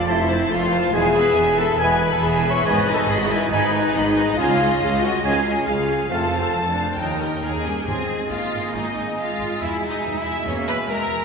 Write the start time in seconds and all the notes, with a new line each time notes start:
0.06 F1 F2 C3 A3 E4 F4 A4 C5 E5 A5 C6
0.27 C4 C5 A5
0.49 F1 F2 A3 F4 A4 F5 C6
0.72 C4 C5 A5
0.92 E1 E2 B2 B3 E4 G#4 E5 G#5
1.16 E4 B4 B5
1.36 E1 E2 B3 G#4 G#5
1.57 E4 A4 B4 A5 B5
1.78 E1 E2 B2 B3 E4 G#4 B4 G#5 B5
2.01 E4 B4 B5
2.10 A4 A5
2.20 E1 E2 B3 G#4 E5 G#5
2.26 G#5
2.45 E4 B4 B5
2.50 C#5 C#6
2.64 G#1 G#2 D#4 B4 D#5 G#5 B5
2.68 B3 G#4 B5
2.88 D#4 B4 G#5
2.93 A4 A5
3.06 G#1 G#2 B3 G#4 G#5
3.11 B5
3.18 F#4 F#5
3.26 E4 B4 E5
3.30 D#4 G#5
3.50 G#1 G#2 B3 D#4 G#4 B4 D#5 G#5
3.54 B5
3.74 D#4 B4 G#5
3.92 G#1 G#2 D#4 D#5 B5
3.97 B3 G#4
4.16 D#4 B4 G#5
4.37 C#2 G#2 C#4 F4 G#4 F5 G#5
4.59 C#4 F4 G#5
4.80 C#2 F4 G#4 F5
5.01 C#4 F4 F#4 F#5 G#5
5.22 C#2 G#2 C#4 F4 G#4 F5 G#5
5.45 C#4 F4 G#5
5.65 C#2 F4 G#4 F5 G#5
5.87 C#4 F4 G#5
6.09 F1 F2 A2 A3 C4 F4 A4 F5 A5
6.32 C4 C5 F5
6.40 A4 A5
6.54 F1 F2 A3 A4 A5
6.68 D4 D5
6.77 C4 C5 F5
6.97 D#2 A#2 C#4 D#4 A#4 D#5 G5 A#5
7.20 C#4 G4 A#4 G5 A#5
7.42 D#2 D#4 G#4 A#4 G#5
7.46 A#5
7.64 G2 C#4 G4 G5
7.85 G#1 G#2 D#3 G#3 C4 G#4 D#5 G#5
8.30 G#1 A#3 F4 F5
8.54 G#1
8.74 G#1 D#4 D#5
8.96 G#1
9.17 G#3 F4 F5
9.39 G#1
9.59 E2 B2 B3 E4 E5
9.64 E5
9.89 D#4 D#5
10.04 E2
10.18 E4 E5
10.26 E2
10.46 E2 A#3 C#4 C#5
10.68 E2 B4 B5
10.88 G#3 A#4 A#5
11.10 E2